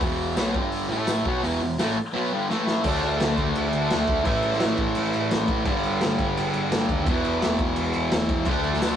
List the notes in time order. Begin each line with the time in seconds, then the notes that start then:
0.01 E1 E2 B2 E3, kick, open hi-hat
0.36 B1 B2 F#3 B3, snare, open hi-hat, tambourine
0.54 G1 G2 D3 G3, kick
0.72 open hi-hat
0.89 A1 A2 E3 A3
1.07 snare, open hi-hat, tambourine
1.25 B1 B2 F#3 B3, kick
1.42 E1 E2 B2 E3, open hi-hat
1.61 E1 E2 B2
1.79 A1 A2 E3 A3, snare, open hi-hat, tambourine
2.13 B2 F#3 B3
2.32 G2 D3 G3
2.49 A2 E3 A3, snare
2.67 snare
2.84 D2 D3 A3, kick, crash
2.89 D4
3.03 D2, crash
3.20 D2, snare, crash
3.38 kick, crash
3.55 D2, crash
3.73 D2, crash
3.90 D2, snare, crash
4.07 D2, kick, crash
4.24 A1 A2 E3, kick, crash
4.29 A3
4.42 A1, crash
4.52 snare
4.60 A1, snare, crash
4.77 kick, crash
4.95 A1, crash
5.13 A1, crash
5.31 A1, snare, crash
5.48 A1, kick, crash
5.65 G1 G2 D3, kick, crash
5.71 G3
5.83 G1, crash
6.01 G1, snare, crash
6.19 kick, crash
6.36 G1, crash
6.53 G1, crash
6.71 G1, snare, crash
6.89 D#2, kick, crash
7.05 E1 E2 B2, kick, crash
7.10 E3
7.25 E1, crash
7.42 E1, snare, crash
7.59 kick, crash
7.76 E1, crash
7.93 E1, crash
8.11 E1, snare, crash
8.29 E1, kick, crash
8.45 D2 D3 A3, kick, tambourine, crash
8.51 D4
8.64 D2, crash
8.73 snare
8.82 D2, snare, tambourine, crash
8.91 tambourine